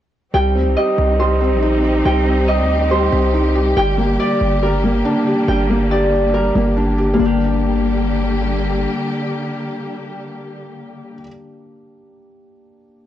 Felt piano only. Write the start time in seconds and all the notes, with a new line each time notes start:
0.34 G3
0.55 C4
0.77 G4
1.19 G3
1.41 C4
1.62 D#4
1.84 G4
2.05 G3
2.27 C4
2.48 G4
2.91 G3
3.12 C4
3.34 D#4
3.55 G4
3.77 G3
3.98 A#3
4.20 G4
4.63 G3
4.84 A#3
5.05 D4
5.27 G4
5.48 G3
5.70 A#3
5.92 G4
6.34 G3
6.55 A#3
6.77 D4
6.98 G4
7.14 G3
7.18 A#3 D4
7.26 G4